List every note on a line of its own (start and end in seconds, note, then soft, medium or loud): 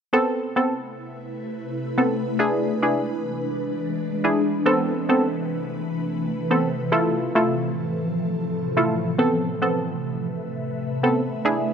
0.13 2.37 C3 medium
0.13 2.37 A3 medium
0.13 0.53 B3 medium
0.13 0.53 C4 medium
0.13 2.37 E4 medium
0.13 0.53 A4 loud
0.13 4.62 B4 medium
0.56 0.74 B3 medium
0.56 0.74 C4 medium
0.56 0.75 A4 medium
1.98 2.16 B3 medium
1.98 2.16 C4 medium
1.98 2.16 A4 medium
2.39 9.15 E3 medium
2.39 4.64 G#3 medium
2.39 2.79 D4 medium
2.39 4.64 D4 medium
2.39 2.79 E4 medium
2.39 2.79 G#4 loud
2.82 3.01 D4 medium
2.82 3.01 E4 medium
2.82 3.01 G#4 medium
4.24 4.42 D4 medium
4.24 4.42 E4 medium
4.24 4.42 G#4 medium
4.66 11.41 C3 medium
4.66 6.90 A3 medium
4.66 5.05 B3 medium
4.66 5.06 C4 medium
4.66 5.06 A4 loud
4.66 6.90 B4 medium
5.09 5.27 B3 medium
5.09 5.27 C4 medium
5.09 5.27 A4 medium
6.51 6.69 B3 medium
6.51 6.69 C4 medium
6.51 6.69 A4 medium
6.92 9.16 A2 medium
6.92 9.16 F3 medium
6.92 7.32 A3 loud
6.92 7.32 E4 medium
6.92 7.32 F4 medium
6.92 9.16 A4 medium
6.92 7.32 A4 loud
7.35 7.53 A3 medium
7.35 7.54 E4 medium
7.35 7.54 F4 medium
7.35 7.54 A4 medium
8.77 8.95 A3 medium
8.77 8.95 E4 medium
8.77 8.95 F4 medium
8.77 8.95 A4 medium
9.19 11.43 A3 medium
9.19 9.58 B3 medium
9.19 9.58 C4 medium
9.19 9.59 A4 loud
9.19 11.74 B4 medium
9.19 11.74 E5 medium
9.62 9.80 B3 medium
9.62 9.80 C4 medium
9.62 9.80 A4 medium
11.03 11.21 B3 medium
11.03 11.22 C4 medium
11.03 11.22 A4 medium
11.45 11.74 G#3 medium
11.45 11.74 D4 medium
11.45 11.74 E4 medium
11.45 11.74 G#4 loud